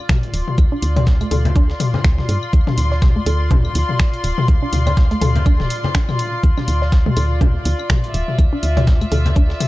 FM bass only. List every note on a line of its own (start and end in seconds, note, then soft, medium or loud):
0.34 0.42 D1 loud
0.58 0.67 D2 medium
0.82 1.25 D2 medium
1.31 1.73 D2 medium
2.04 2.21 D2 medium
2.29 2.37 G2 medium
2.53 2.62 D2 loud
2.78 3.20 D2 medium
3.26 3.69 D2 medium
3.75 3.84 D2 medium
4.24 4.32 D1 loud
4.48 4.57 D2 medium
4.73 5.15 D2 medium
5.21 5.59 D2 medium
5.60 5.66 D1 medium
6.43 6.52 D2 loud
6.68 7.10 D2 medium
7.17 7.59 D2 medium
7.65 7.74 D2 loud
8.14 8.23 D1 loud
8.39 8.47 D2 loud
8.63 9.05 D2 medium
9.12 9.54 D2 medium